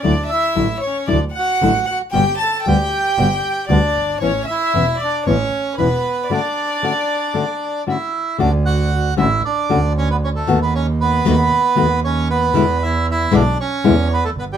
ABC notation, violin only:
X:1
M:4/4
L:1/8
Q:1/4=115
K:D
V:1 name="Violin"
d e2 c d f2 f | g a g4 d2 | c e2 d c2 B2 | d6 z2 |
z8 | z8 | z8 |]